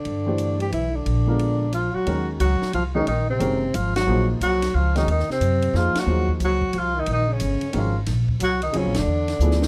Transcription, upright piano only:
0.26 E3 A3 D4 G4 C5
1.27 G#3 B3 D4 F4 A#4
2.06 D#3 G#3 C#4 F#4 A#4
2.95 D#3 G#3 C#4 F#4 A#4
3.39 D#3 G#3 C#4 F#4 A#4
4.07 F3 A#3 D#4 G#4 C5
4.95 D#3 G#3 C#4 F#4 A#4
5.74 F3 A#3 D#4 G#4 C5
6.06 F3 A#3 D#4 G#4 C5
7.73 D#3 G#3 C#4 F#4 A#4
8.73 C#3 F#3 C4 F4 G#4
9.41 F3 B3 D4 E4 G#4

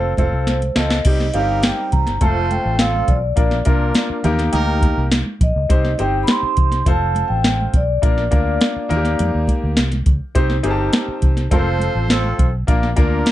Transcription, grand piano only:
Already playing: C4 F4 A4
0.19 C4 F4 A4
0.76 C4 F4 A4
1.06 G3 C4 D#4 G4
1.34 G3 C4 D#4 G4
2.21 A3 C4 F4 A4
3.36 A#3 D4 F4 A#4
3.65 A#3 D4 F4 A#4
4.24 A#3 D#4 G4 A#4
5.69 C4 D#4 G4 C5
5.99 C4 D#4 G4 C5
6.86 C4 F4 A4 C5
8.02 A#3 D4 F4 A#4
8.31 A#3 D4 F4 A#4
8.89 A#3 D#4 F4 A#4
8.96 G4
10.35 C4 D#4 G4 C5
10.63 C4 D#4 G4 G#4
10.71 A5
11.51 C4 F4 A4 A#4
11.59 C5
12.67 A#3 D4 F4 A#4
12.96 A#3 D4 F4 A#4

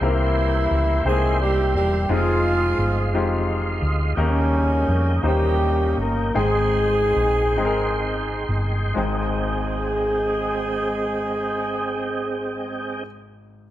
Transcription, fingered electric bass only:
0.01 C2
0.71 C#2
1.05 C2
1.74 E1
2.09 F1
2.78 G1
3.13 F1
3.82 D2
4.17 D#2
4.88 F2
5.23 D#2
5.98 G1
6.35 G#1
7.16 A#1
7.58 G#1
8.49 G1
8.97 G#1

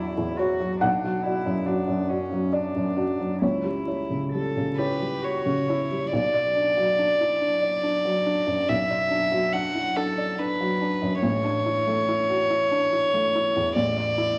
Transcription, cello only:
Already playing: E4
0.38 F#4
0.80 D4
1.22 E4
1.66 D4
2.09 C#4
2.54 D4
3.43 E4
4.33 A4
4.79 G4
5.22 F#4
5.68 E4
6.12 F#3
11.22 E3

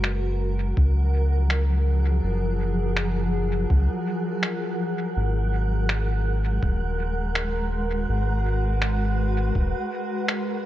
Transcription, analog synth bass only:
Already playing: F#1
0.77 C#2
2.23 F#1
3.70 C#2
5.17 G#1
6.63 D#1
8.09 G#1
9.55 D#1

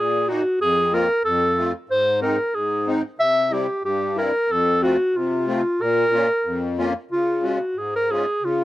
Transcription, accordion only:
Already playing: A#2
0.28 A#3 D#4 F#4
0.61 F2
0.93 A#3 C4 F4
1.24 F2
1.57 A3 C4 F4
1.89 G#2
2.21 G#3 C4 D#4
2.54 G#2
2.87 G#3 C4 D#4
3.19 C3
3.51 G3 C4 E4
3.83 G2
4.16 G3 C4 E4
4.48 F2
4.82 A3 C4 F4
5.15 C3
5.47 A3 C4 F4
5.80 A#2
6.13 A#3 C#4 F4
6.44 F2
6.78 A#3 C#4 F4
7.11 C#3
7.43 G#3 C#4 F4
7.75 G#2
8.11 G#3 C#4 F4
8.42 C#3

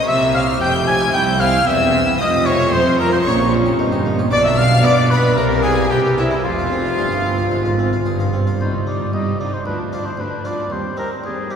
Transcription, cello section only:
0.09 C3
0.62 F2
1.14 C2
1.68 E2
2.21 F2
2.73 F3
3.26 A#2
3.79 G2
4.32 B2
4.85 B3
5.38 C3
5.91 C3
6.46 F2
7.00 G2
7.53 G#2
8.07 G2
8.60 C2
9.13 C2
9.66 D2
10.18 D2
10.72 D#2
11.24 D#2

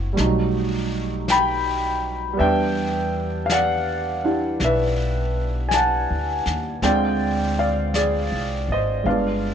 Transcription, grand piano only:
Already playing: A3 C4 E4 F#4
0.13 G3 A3
0.20 F#3 D#4
1.30 G5 B5
2.33 G3 B3
2.39 D4 E5 G5
3.46 F5
3.52 D5 F#5
4.24 D4 E4 G4
4.64 B4 E5
5.69 G#5
5.74 F#5 A5
6.83 D3 G#3 C4 F4 D5 G5
7.59 D5 F5
7.95 G#4 D5
8.72 C5 D#5
9.04 G#3 B3 D4 F5
9.08 F4 D5

